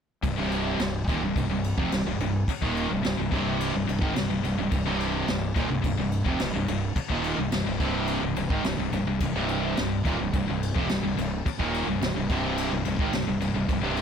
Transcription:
0.23 fingered electric bass C1, distorted electric guitar C2 G2, kick, ride
0.36 fingered electric bass C1, distorted electric guitar C2 G2 C3
0.52 ride
0.79 fingered electric bass C1, distorted electric guitar C2 G2, snare, ride
1.08 fingered electric bass D#1, distorted electric guitar D#2 A#2, kick, ride
1.21 fingered electric bass C1, distorted electric guitar C2 G2
1.36 fingered electric bass C1, distorted electric guitar C2 G2, kick, ride
1.49 fingered electric bass C1, distorted electric guitar C2 G2
1.64 ride
1.78 fingered electric bass F1, distorted electric guitar F2 C3, kick
1.91 fingered electric bass C1, distorted electric guitar C2 G2, snare, ride
2.06 fingered electric bass C1, distorted electric guitar C2 G2
2.20 fingered electric bass C1, distorted electric guitar C2 G2, ride
2.48 muted fingered electric bass stroke, muted distorted electric guitar stroke, kick, ride
2.62 fingered electric bass D#1, distorted electric guitar D#2 A#2 D#3, kick
2.77 ride
2.89 fingered electric bass C1, distorted electric guitar C2 G2
3.03 fingered electric bass C1, distorted electric guitar C2 G2, snare, ride
3.17 fingered electric bass C1, distorted electric guitar C2 G2
3.31 fingered electric bass C1, distorted electric guitar C2 G2 C3, kick, ride
3.61 ride
3.73 fingered electric bass C1, distorted electric guitar C2 G2
3.87 fingered electric bass C1, distorted electric guitar C2 G2, ride
4.02 fingered electric bass G#1, distorted electric guitar G#2 D#3, kick
4.16 fingered electric bass C1, distorted electric guitar C2 G2, snare, ride
4.30 fingered electric bass C1, distorted electric guitar C2 G2
4.43 fingered electric bass C1, distorted electric guitar C2 G2, ride
4.58 fingered electric bass C1, distorted electric guitar C2 G2
4.71 fingered electric bass C1, distorted electric guitar C2 G2, kick, ride
4.86 fingered electric bass C1, distorted electric guitar C2 G2 C3
5.00 ride
5.28 fingered electric bass C1, distorted electric guitar C2 G2, snare, ride
5.54 fingered electric bass D#1, distorted electric guitar D#2 A#2, kick, ride
5.69 fingered electric bass C1, distorted electric guitar C2 G2
5.82 fingered electric bass C1, distorted electric guitar C2 G2, kick, ride
5.97 fingered electric bass C1, distorted electric guitar C2 G2
6.12 ride
6.25 fingered electric bass F1, distorted electric guitar F2 C3, kick
6.39 fingered electric bass C1, distorted electric guitar C2 G2, snare, ride
6.54 fingered electric bass C1, distorted electric guitar C2 G2
6.68 fingered electric bass C1, distorted electric guitar C2 G2, ride
6.96 muted fingered electric bass stroke, muted distorted electric guitar stroke, kick, ride
7.09 fingered electric bass D#1, distorted electric guitar D#2 A#2 D#3, kick
7.24 ride
7.38 fingered electric bass C1, distorted electric guitar C2 G2
7.52 fingered electric bass C1, distorted electric guitar C2 G2, snare, ride
7.66 fingered electric bass C1, distorted electric guitar C2 G2
7.80 fingered electric bass C1, distorted electric guitar C2 G2 C3, kick, ride
8.07 ride
8.22 fingered electric bass C1, distorted electric guitar C2 G2
8.36 fingered electric bass C1, distorted electric guitar C2 G2, ride
8.50 fingered electric bass G#1, distorted electric guitar G#2 D#3, kick
8.64 fingered electric bass C1, distorted electric guitar C2 G2, snare, ride
8.79 fingered electric bass C1, distorted electric guitar C2 G2
8.92 fingered electric bass C1, distorted electric guitar C2 G2, ride
9.05 fingered electric bass C1, distorted electric guitar C2 G2
9.20 fingered electric bass C1, distorted electric guitar C2 G2, kick, crash
9.34 fingered electric bass C1, distorted electric guitar C2 G2 C3
9.48 ride
9.77 fingered electric bass C1, distorted electric guitar C2 G2, snare, ride
10.05 fingered electric bass D#1, distorted electric guitar D#2 A#2, kick, ride
10.18 fingered electric bass C1, distorted electric guitar C2 G2
10.33 fingered electric bass C1, distorted electric guitar C2 G2, kick, ride
10.48 fingered electric bass C1, distorted electric guitar C2 G2
10.63 ride
10.74 fingered electric bass F1, distorted electric guitar F2 C3, kick
10.89 fingered electric bass C1, distorted electric guitar C2 G2, snare, ride
11.03 fingered electric bass C1, distorted electric guitar C2 G2
11.17 fingered electric bass C1, distorted electric guitar C2 G2, ride
11.46 muted fingered electric bass stroke, muted distorted electric guitar stroke, kick, ride
11.59 fingered electric bass D#1, distorted electric guitar D#2 A#2 D#3, kick
11.74 ride
11.87 fingered electric bass C1, distorted electric guitar C2 G2
12.02 fingered electric bass C1, distorted electric guitar C2 G2, snare, ride
12.16 fingered electric bass C1, distorted electric guitar C2 G2
12.30 fingered electric bass C1, distorted electric guitar C2 G2 C3, kick, ride
12.58 ride
12.71 fingered electric bass C1, distorted electric guitar C2 G2
12.85 fingered electric bass C1, distorted electric guitar C2 G2, ride
12.99 fingered electric bass G#1, distorted electric guitar G#2 D#3, kick
13.13 fingered electric bass C1, distorted electric guitar C2 G2, snare, ride
13.27 fingered electric bass C1, distorted electric guitar C2 G2
13.40 fingered electric bass C1, distorted electric guitar C2 G2, ride
13.54 fingered electric bass C1, distorted electric guitar C2 G2
13.69 fingered electric bass C1, distorted electric guitar C2 G2, kick, ride
13.81 fingered electric bass C1, distorted electric guitar C2 G2 C3
13.96 ride

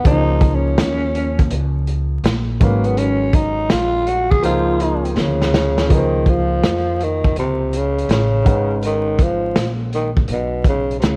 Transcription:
0.04 upright bass C#2, grand piano D#3 A#3 D#4 G#4 C5, tenor saxophone D#4, kick, closed hi-hat
0.10 grand piano F3
0.41 kick, closed hi-hat
0.55 tenor saxophone C#4
0.77 upright bass D#2, snare, closed hi-hat
1.15 closed hi-hat
1.39 kick, closed hi-hat
1.50 upright bass C#2, closed hi-hat
1.87 closed hi-hat
2.24 upright bass A#1, snare, closed hi-hat
2.60 upright bass G#1, grand piano D#3 F#3 G#3 C#4 B4, tenor saxophone A#3, kick, closed hi-hat
2.84 tenor saxophone B3, closed hi-hat
2.97 tenor saxophone C#4, closed hi-hat
3.33 tenor saxophone D#4, kick, closed hi-hat
3.70 upright bass A#1, tenor saxophone F4, snare, closed hi-hat
4.07 tenor saxophone F#4, closed hi-hat
4.31 tenor saxophone G#4, kick
4.42 upright bass C#2, grand piano F3 A#3 D#4 G#4 C5, tenor saxophone F4, closed hi-hat
4.80 closed hi-hat
5.05 closed hi-hat
5.14 upright bass D2, tenor saxophone C3, snare
5.20 tenor saxophone C#3
5.42 snare
5.54 snare
5.78 snare
5.89 upright bass C#2, grand piano F3 A#3 D#4 G#4 B4, kick, closed hi-hat
5.93 tenor saxophone D#3
5.98 grand piano C5
6.26 tenor saxophone F3, kick, closed hi-hat
6.63 upright bass F2, snare, closed hi-hat
7.00 tenor saxophone D#3, closed hi-hat
7.24 kick
7.36 upright bass C#2, tenor saxophone C3, closed hi-hat
7.73 tenor saxophone C#3, closed hi-hat
7.98 closed hi-hat
8.09 upright bass A1, tenor saxophone C#3, snare, closed hi-hat
8.44 upright bass G#1, grand piano G#3 C#4 D#4 B4 F#5, kick, closed hi-hat
8.83 tenor saxophone D#3, closed hi-hat
9.19 tenor saxophone F3, kick, closed hi-hat
9.56 upright bass A#1, snare, closed hi-hat
9.93 tenor saxophone D#3, closed hi-hat
10.17 kick
10.28 upright bass B1, closed hi-hat
10.32 tenor saxophone B2
10.64 kick, closed hi-hat
10.69 tenor saxophone C#3
10.91 closed hi-hat
10.99 upright bass D2, tenor saxophone C3, closed hi-hat
11.04 tenor saxophone C#3, snare

